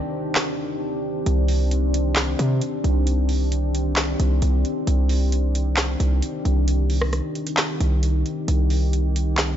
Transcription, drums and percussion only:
0, 0, Header, 1, 2, 480
1, 0, Start_track
1, 0, Key_signature, -3, "minor"
1, 0, Tempo, 451128
1, 1344, Time_signature, 4, 2, 24, 8
1, 10179, End_track
2, 0, Start_track
2, 0, Title_t, "Drums"
2, 376, Note_on_c, 9, 39, 91
2, 383, Note_on_c, 9, 38, 115
2, 483, Note_off_c, 9, 39, 0
2, 490, Note_off_c, 9, 38, 0
2, 1345, Note_on_c, 9, 42, 88
2, 1451, Note_off_c, 9, 42, 0
2, 1579, Note_on_c, 9, 46, 70
2, 1686, Note_off_c, 9, 46, 0
2, 1824, Note_on_c, 9, 42, 76
2, 1930, Note_off_c, 9, 42, 0
2, 2066, Note_on_c, 9, 42, 92
2, 2173, Note_off_c, 9, 42, 0
2, 2296, Note_on_c, 9, 39, 96
2, 2300, Note_on_c, 9, 42, 85
2, 2303, Note_on_c, 9, 38, 119
2, 2403, Note_off_c, 9, 39, 0
2, 2406, Note_off_c, 9, 42, 0
2, 2410, Note_off_c, 9, 38, 0
2, 2545, Note_on_c, 9, 42, 85
2, 2651, Note_off_c, 9, 42, 0
2, 2782, Note_on_c, 9, 42, 87
2, 2889, Note_off_c, 9, 42, 0
2, 3025, Note_on_c, 9, 42, 56
2, 3132, Note_off_c, 9, 42, 0
2, 3264, Note_on_c, 9, 42, 90
2, 3371, Note_off_c, 9, 42, 0
2, 3499, Note_on_c, 9, 46, 71
2, 3606, Note_off_c, 9, 46, 0
2, 3744, Note_on_c, 9, 42, 73
2, 3850, Note_off_c, 9, 42, 0
2, 3986, Note_on_c, 9, 42, 84
2, 4093, Note_off_c, 9, 42, 0
2, 4216, Note_on_c, 9, 39, 97
2, 4220, Note_on_c, 9, 42, 85
2, 4224, Note_on_c, 9, 38, 118
2, 4323, Note_off_c, 9, 39, 0
2, 4327, Note_off_c, 9, 42, 0
2, 4330, Note_off_c, 9, 38, 0
2, 4465, Note_on_c, 9, 42, 78
2, 4571, Note_off_c, 9, 42, 0
2, 4703, Note_on_c, 9, 42, 84
2, 4809, Note_off_c, 9, 42, 0
2, 4946, Note_on_c, 9, 42, 59
2, 5053, Note_off_c, 9, 42, 0
2, 5185, Note_on_c, 9, 42, 86
2, 5291, Note_off_c, 9, 42, 0
2, 5419, Note_on_c, 9, 46, 70
2, 5526, Note_off_c, 9, 46, 0
2, 5664, Note_on_c, 9, 42, 76
2, 5770, Note_off_c, 9, 42, 0
2, 5906, Note_on_c, 9, 42, 88
2, 6012, Note_off_c, 9, 42, 0
2, 6137, Note_on_c, 9, 39, 93
2, 6140, Note_on_c, 9, 42, 86
2, 6144, Note_on_c, 9, 38, 115
2, 6243, Note_off_c, 9, 39, 0
2, 6247, Note_off_c, 9, 42, 0
2, 6250, Note_off_c, 9, 38, 0
2, 6385, Note_on_c, 9, 42, 84
2, 6492, Note_off_c, 9, 42, 0
2, 6623, Note_on_c, 9, 42, 87
2, 6729, Note_off_c, 9, 42, 0
2, 6866, Note_on_c, 9, 42, 56
2, 6973, Note_off_c, 9, 42, 0
2, 7105, Note_on_c, 9, 42, 87
2, 7211, Note_off_c, 9, 42, 0
2, 7339, Note_on_c, 9, 46, 69
2, 7446, Note_off_c, 9, 46, 0
2, 7464, Note_on_c, 9, 37, 105
2, 7571, Note_off_c, 9, 37, 0
2, 7584, Note_on_c, 9, 42, 76
2, 7585, Note_on_c, 9, 37, 64
2, 7690, Note_off_c, 9, 42, 0
2, 7691, Note_off_c, 9, 37, 0
2, 7824, Note_on_c, 9, 42, 50
2, 7930, Note_off_c, 9, 42, 0
2, 7944, Note_on_c, 9, 42, 87
2, 8050, Note_off_c, 9, 42, 0
2, 8056, Note_on_c, 9, 39, 95
2, 8060, Note_on_c, 9, 42, 82
2, 8063, Note_on_c, 9, 38, 120
2, 8162, Note_off_c, 9, 39, 0
2, 8166, Note_off_c, 9, 42, 0
2, 8169, Note_off_c, 9, 38, 0
2, 8305, Note_on_c, 9, 42, 77
2, 8411, Note_off_c, 9, 42, 0
2, 8542, Note_on_c, 9, 42, 87
2, 8649, Note_off_c, 9, 42, 0
2, 8786, Note_on_c, 9, 42, 60
2, 8892, Note_off_c, 9, 42, 0
2, 9025, Note_on_c, 9, 42, 87
2, 9131, Note_off_c, 9, 42, 0
2, 9259, Note_on_c, 9, 46, 70
2, 9366, Note_off_c, 9, 46, 0
2, 9504, Note_on_c, 9, 42, 75
2, 9610, Note_off_c, 9, 42, 0
2, 9746, Note_on_c, 9, 42, 87
2, 9852, Note_off_c, 9, 42, 0
2, 9976, Note_on_c, 9, 39, 95
2, 9980, Note_on_c, 9, 42, 84
2, 9983, Note_on_c, 9, 38, 116
2, 10082, Note_off_c, 9, 39, 0
2, 10086, Note_off_c, 9, 42, 0
2, 10089, Note_off_c, 9, 38, 0
2, 10179, End_track
0, 0, End_of_file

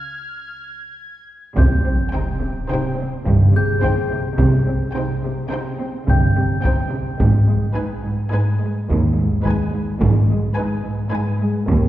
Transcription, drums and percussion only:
0, 0, Header, 1, 2, 480
1, 0, Start_track
1, 0, Key_signature, -3, "minor"
1, 0, Tempo, 575264
1, 1314, Time_signature, 5, 2, 24, 8
1, 2260, Tempo, 560224
1, 10125, End_track
2, 0, Start_track
2, 0, Title_t, "Taiko and cinematic ensemble drums"
2, 1311, Note_on_c, 9, 41, 71
2, 1395, Note_off_c, 9, 41, 0
2, 2737, Note_on_c, 9, 41, 66
2, 2823, Note_off_c, 9, 41, 0
2, 3218, Note_on_c, 9, 41, 60
2, 3304, Note_off_c, 9, 41, 0
2, 3697, Note_on_c, 9, 41, 75
2, 3783, Note_off_c, 9, 41, 0
2, 5149, Note_on_c, 9, 41, 62
2, 5235, Note_off_c, 9, 41, 0
2, 5635, Note_on_c, 9, 41, 60
2, 5720, Note_off_c, 9, 41, 0
2, 6111, Note_on_c, 9, 41, 69
2, 6197, Note_off_c, 9, 41, 0
2, 7560, Note_on_c, 9, 41, 65
2, 7646, Note_off_c, 9, 41, 0
2, 8040, Note_on_c, 9, 41, 61
2, 8126, Note_off_c, 9, 41, 0
2, 8515, Note_on_c, 9, 41, 77
2, 8600, Note_off_c, 9, 41, 0
2, 9942, Note_on_c, 9, 41, 64
2, 10028, Note_off_c, 9, 41, 0
2, 10125, End_track
0, 0, End_of_file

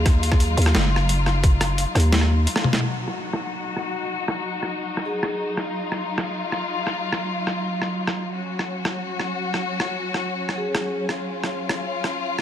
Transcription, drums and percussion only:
0, 0, Header, 1, 2, 480
1, 0, Start_track
1, 0, Key_signature, -6, "minor"
1, 0, Tempo, 344828
1, 78, Time_signature, 4, 2, 24, 8
1, 17287, End_track
2, 0, Start_track
2, 0, Title_t, "Drums"
2, 78, Note_on_c, 9, 36, 119
2, 81, Note_on_c, 9, 37, 58
2, 81, Note_on_c, 9, 42, 83
2, 218, Note_off_c, 9, 36, 0
2, 220, Note_off_c, 9, 37, 0
2, 220, Note_off_c, 9, 42, 0
2, 321, Note_on_c, 9, 42, 66
2, 439, Note_on_c, 9, 36, 108
2, 442, Note_on_c, 9, 37, 57
2, 460, Note_off_c, 9, 42, 0
2, 559, Note_on_c, 9, 42, 79
2, 578, Note_off_c, 9, 36, 0
2, 581, Note_off_c, 9, 37, 0
2, 698, Note_off_c, 9, 42, 0
2, 800, Note_on_c, 9, 42, 52
2, 859, Note_off_c, 9, 42, 0
2, 859, Note_on_c, 9, 42, 64
2, 921, Note_on_c, 9, 37, 82
2, 998, Note_off_c, 9, 42, 0
2, 1039, Note_on_c, 9, 38, 117
2, 1039, Note_on_c, 9, 42, 80
2, 1060, Note_off_c, 9, 37, 0
2, 1178, Note_off_c, 9, 38, 0
2, 1178, Note_off_c, 9, 42, 0
2, 1340, Note_on_c, 9, 37, 55
2, 1479, Note_off_c, 9, 37, 0
2, 1520, Note_on_c, 9, 42, 82
2, 1659, Note_off_c, 9, 42, 0
2, 1759, Note_on_c, 9, 37, 58
2, 1898, Note_off_c, 9, 37, 0
2, 1998, Note_on_c, 9, 36, 120
2, 1998, Note_on_c, 9, 42, 84
2, 2137, Note_off_c, 9, 36, 0
2, 2137, Note_off_c, 9, 42, 0
2, 2239, Note_on_c, 9, 37, 86
2, 2239, Note_on_c, 9, 42, 71
2, 2378, Note_off_c, 9, 37, 0
2, 2378, Note_off_c, 9, 42, 0
2, 2479, Note_on_c, 9, 42, 81
2, 2618, Note_off_c, 9, 42, 0
2, 2721, Note_on_c, 9, 37, 58
2, 2721, Note_on_c, 9, 42, 53
2, 2780, Note_off_c, 9, 42, 0
2, 2780, Note_on_c, 9, 42, 67
2, 2860, Note_off_c, 9, 37, 0
2, 2919, Note_off_c, 9, 42, 0
2, 2958, Note_on_c, 9, 38, 113
2, 2958, Note_on_c, 9, 42, 79
2, 3080, Note_on_c, 9, 37, 56
2, 3097, Note_off_c, 9, 38, 0
2, 3097, Note_off_c, 9, 42, 0
2, 3220, Note_off_c, 9, 37, 0
2, 3439, Note_on_c, 9, 42, 84
2, 3560, Note_on_c, 9, 37, 85
2, 3560, Note_on_c, 9, 38, 37
2, 3578, Note_off_c, 9, 42, 0
2, 3680, Note_on_c, 9, 48, 65
2, 3699, Note_off_c, 9, 37, 0
2, 3699, Note_off_c, 9, 38, 0
2, 3801, Note_on_c, 9, 38, 73
2, 3819, Note_off_c, 9, 48, 0
2, 3940, Note_off_c, 9, 38, 0
2, 4281, Note_on_c, 9, 37, 50
2, 4420, Note_off_c, 9, 37, 0
2, 4640, Note_on_c, 9, 37, 78
2, 4779, Note_off_c, 9, 37, 0
2, 5241, Note_on_c, 9, 37, 49
2, 5380, Note_off_c, 9, 37, 0
2, 5960, Note_on_c, 9, 37, 74
2, 6099, Note_off_c, 9, 37, 0
2, 6439, Note_on_c, 9, 37, 46
2, 6579, Note_off_c, 9, 37, 0
2, 6920, Note_on_c, 9, 37, 48
2, 7059, Note_off_c, 9, 37, 0
2, 7279, Note_on_c, 9, 37, 75
2, 7418, Note_off_c, 9, 37, 0
2, 7759, Note_on_c, 9, 37, 50
2, 7898, Note_off_c, 9, 37, 0
2, 8238, Note_on_c, 9, 37, 46
2, 8377, Note_off_c, 9, 37, 0
2, 8600, Note_on_c, 9, 37, 72
2, 8739, Note_off_c, 9, 37, 0
2, 9080, Note_on_c, 9, 37, 47
2, 9219, Note_off_c, 9, 37, 0
2, 9559, Note_on_c, 9, 37, 48
2, 9698, Note_off_c, 9, 37, 0
2, 9918, Note_on_c, 9, 37, 72
2, 10057, Note_off_c, 9, 37, 0
2, 10398, Note_on_c, 9, 37, 47
2, 10537, Note_off_c, 9, 37, 0
2, 10880, Note_on_c, 9, 37, 47
2, 11019, Note_off_c, 9, 37, 0
2, 11239, Note_on_c, 9, 37, 69
2, 11378, Note_off_c, 9, 37, 0
2, 11960, Note_on_c, 9, 37, 49
2, 12100, Note_off_c, 9, 37, 0
2, 12320, Note_on_c, 9, 37, 72
2, 12459, Note_off_c, 9, 37, 0
2, 12799, Note_on_c, 9, 37, 46
2, 12939, Note_off_c, 9, 37, 0
2, 13279, Note_on_c, 9, 37, 50
2, 13418, Note_off_c, 9, 37, 0
2, 13640, Note_on_c, 9, 37, 74
2, 13779, Note_off_c, 9, 37, 0
2, 14120, Note_on_c, 9, 37, 48
2, 14259, Note_off_c, 9, 37, 0
2, 14599, Note_on_c, 9, 37, 48
2, 14738, Note_off_c, 9, 37, 0
2, 14958, Note_on_c, 9, 37, 79
2, 15097, Note_off_c, 9, 37, 0
2, 15437, Note_on_c, 9, 37, 53
2, 15576, Note_off_c, 9, 37, 0
2, 15918, Note_on_c, 9, 37, 50
2, 16057, Note_off_c, 9, 37, 0
2, 16278, Note_on_c, 9, 37, 78
2, 16417, Note_off_c, 9, 37, 0
2, 16761, Note_on_c, 9, 37, 50
2, 16900, Note_off_c, 9, 37, 0
2, 17241, Note_on_c, 9, 37, 51
2, 17287, Note_off_c, 9, 37, 0
2, 17287, End_track
0, 0, End_of_file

